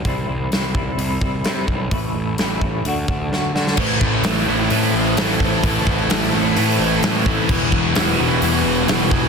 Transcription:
0.05 picked electric bass C2, clean electric guitar C3 E3 G3 C4 E4, kick, open hi-hat
0.28 picked electric bass C2, clean electric guitar G3 C4 E4
0.51 picked electric bass C2, clean electric guitar E3 G3 C4 E4, snare, open hi-hat
0.75 clean electric guitar C3 E3 G3 C4 E4, kick
0.97 picked electric bass C2, clean electric guitar E3 G3 C4 E4, open hi-hat
1.21 picked electric bass C2, clean electric guitar G3 C4 E4, kick
1.44 clean electric guitar C3 E3 G3 C4 E4, picked electric bass C3, snare, open hi-hat
1.68 picked electric bass B1, clean electric guitar G3 C4 E4, kick
1.91 picked electric bass A1, clean electric guitar A2 E3 A3 C#4 E4, kick, open hi-hat
2.15 picked electric bass A1, clean electric guitar A3 C#4 E4
2.38 picked electric bass A1, clean electric guitar E3 A3 C#4 E4, snare, open hi-hat
2.61 picked electric bass A1, clean electric guitar A2 E3 A3 C#4 E4, kick
2.85 picked electric bass D2, clean electric guitar D3 A3 D4 F#4, open hi-hat
3.08 picked electric bass D2, clean electric guitar A3 D4 F#4, kick
3.31 picked electric bass D2, clean electric guitar D3 A3 D4 F#4, snare
3.54 picked electric bass D3, clean electric guitar A3 D4 F#4, snare
3.67 snare
3.77 picked electric bass A1, overdriven electric guitar A2 E3 A3 C4 E4, string section E4 A4 C5 A5, kick, crash
4.01 picked electric bass A1, kick
4.24 picked electric bass A1, overdriven electric guitar A2 E3 A3 C4 E4, snare, open hi-hat
4.47 picked electric bass A1, overdriven electric guitar A2 E3 A3 C4 E4
4.70 overdriven electric guitar A2 E3 A3 C4 E4, picked electric bass A2, open hi-hat
4.94 picked electric bass A1
5.17 picked electric bass A1, overdriven electric guitar A2 E3 A3 C4 E4, snare, open hi-hat
5.39 overdriven electric guitar A2 E3 A3 C4 E4, kick
5.63 picked electric bass A1, overdriven electric guitar A2 E3 A3 C4 E4, kick, open hi-hat
5.87 picked electric bass A1, kick
6.10 picked electric bass A1, overdriven electric guitar A2 E3 A3 C4 E4, snare, open hi-hat
6.33 picked electric bass A1, overdriven electric guitar A2 E3 A3 C4 E4
6.56 overdriven electric guitar A2 E3 A3 C4 E4, picked electric bass A2, open hi-hat
6.80 picked electric bass A1
7.02 picked electric bass A1, overdriven electric guitar A2 E3 A3 C4 E4, snare, open hi-hat
7.26 overdriven electric guitar A2 E3 A3 C4 E4, kick
7.49 picked electric bass E1, distorted electric guitar E2 B2, overdriven electric guitar E3 G3 B3 E4, string section G4 B4 F#5, kick, crash
7.72 picked electric bass E1, kick
7.95 picked electric bass E1, distorted electric guitar E2 B2, overdriven electric guitar E3 G3 B3 E4, snare, open hi-hat
8.18 picked electric bass E1, distorted electric guitar E2 B2, overdriven electric guitar E3 G3 B3 E4
8.42 picked electric bass E2, distorted electric guitar E2 B2, overdriven electric guitar E3 G3 B3 E4, open hi-hat
8.64 picked electric bass E1
8.88 picked electric bass E1, distorted electric guitar E2 B2, overdriven electric guitar E3 G3 B3 E4, snare, open hi-hat
9.11 distorted electric guitar E2 B2, overdriven electric guitar E3 G3 B3 E4, kick

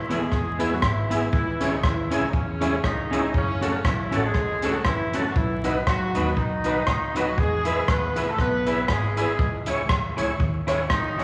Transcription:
Already playing: horn section E3 E4
0.09 upright bass D#2, tonewheel organ G#3 B3 E4 G#4, clean electric guitar B3 E4 G#4, closed hi-hat
0.15 horn section A3 A4
0.20 horn section G#3 G#4
0.32 upright bass E2, kick, cross-stick
0.59 tonewheel organ G#3 B3 E4 G#4, clean electric guitar B3 E4 G#4, closed hi-hat
0.72 horn section F#3 F#4
0.82 upright bass G#1, horn section E3 E4, kick, cross-stick
1.10 tonewheel organ G#3 B3 E4 G#4, clean electric guitar B3 E4 G#4, closed hi-hat
1.32 upright bass C#2, horn section E3 E4, kick
1.60 tonewheel organ G#3 C#4 E4 G#4, clean electric guitar C#4 E4 G#4, closed hi-hat
1.72 horn section D#3 D#4
1.83 upright bass D#2, horn section E3 E4, kick, cross-stick
2.10 upright bass C#2, tonewheel organ G#3 C#4 E4 G#4, clean electric guitar C#4 E4 G#4, closed hi-hat
2.27 horn section D#3 D#4
2.32 upright bass E2, horn section C#3 C#4, kick
2.61 tonewheel organ G#3 C#4 E4 G#4, clean electric guitar C#4 E4 G#4, closed hi-hat
2.83 upright bass C#2, horn section D#3 D#4, kick, cross-stick
3.11 tonewheel organ G#3 C#4 E4 G#4, clean electric guitar C#4 E4 G#4, closed hi-hat
3.34 upright bass F#1, horn section C#3 C#4, kick
3.61 tonewheel organ A3 C#4 F#4 A4, clean electric guitar C#4 F#4 A4, closed hi-hat
3.85 upright bass B1, horn section E3 E4, kick, cross-stick
4.11 upright bass A1, tonewheel organ A3 C#4 F#4 A4, clean electric guitar C#4 F#4 A4, closed hi-hat
4.24 horn section G#3 G#4
4.34 upright bass C#2, kick, cross-stick
4.62 tonewheel organ A3 C#4 F#4 A4, clean electric guitar C#4 F#4 A4, closed hi-hat
4.74 horn section F#3 F#4
4.85 upright bass F#1, horn section E3 E4, kick, cross-stick
5.13 tonewheel organ A3 C#4 F#4 A4, clean electric guitar C#4 F#4 A4, closed hi-hat
5.30 horn section F#3 F#4
5.36 upright bass B1, horn section E3 E4, kick
5.64 tonewheel organ B3 D#4 F#4 B4, clean electric guitar D#4 F#4 B4, closed hi-hat
5.87 upright bass C#2, horn section F#3 F#4, kick, cross-stick
6.15 upright bass D#2, tonewheel organ B3 D#4 F#4 B4, clean electric guitar D#4 F#4 B4, closed hi-hat
6.37 upright bass B1, horn section D#3 D#4, kick
6.64 tonewheel organ B3 D#4 F#4 B4, clean electric guitar D#4 F#4 B4, closed hi-hat
6.87 upright bass C#2, kick, cross-stick
7.15 horn section F#3 F#4, tonewheel organ B3 D#4 F#4 B4, clean electric guitar D#4 F#4 B4, closed hi-hat
7.38 upright bass E2, horn section G#3 G#4, kick
7.65 tonewheel organ B3 E4 G#4 B4, clean electric guitar E4 G#4 B4, closed hi-hat
7.88 upright bass D#2, horn section B3 B4, kick, cross-stick
8.16 upright bass C#2, tonewheel organ B3 E4 G#4 B4, clean electric guitar E4 G#4 B4, closed hi-hat
8.29 horn section A3 A4
8.38 upright bass B1, horn section B3 B4, kick, cross-stick
8.66 tonewheel organ B3 E4 G#4 B4, clean electric guitar E4 G#4 B4, closed hi-hat
8.88 upright bass G#1, horn section G#3 G#4, kick, cross-stick
9.17 horn section G#3 G#4, tonewheel organ B3 E4 G#4 B4, clean electric guitar E4 G#4 B4, closed hi-hat
9.39 upright bass C#2, kick
9.66 tonewheel organ C#4 E4 G#4 C#5, clean electric guitar E4 G#4 C#5, closed hi-hat
9.89 upright bass D#2, kick, cross-stick
10.17 upright bass C#2, tonewheel organ C#4 E4 G#4 C#5, clean electric guitar E4 G#4 C#5, closed hi-hat
10.40 upright bass D#2, kick
10.67 tonewheel organ C#4 E4 G#4 C#5, clean electric guitar E4 G#4 C#5, cross-stick, closed hi-hat
10.90 upright bass C#2, horn section D#3 D#4, kick, cross-stick
11.17 tonewheel organ C#4 E4 G#4 C#5, clean electric guitar E4 G#4 C#5, open hi-hat

